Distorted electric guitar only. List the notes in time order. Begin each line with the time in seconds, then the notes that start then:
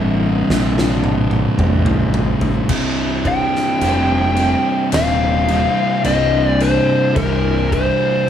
Already playing: C2 G2 C3
2.69 C2 G2 C3
5.47 C2 G2 C3
6.04 C2 G2 C3
7.15 C2 G2 C3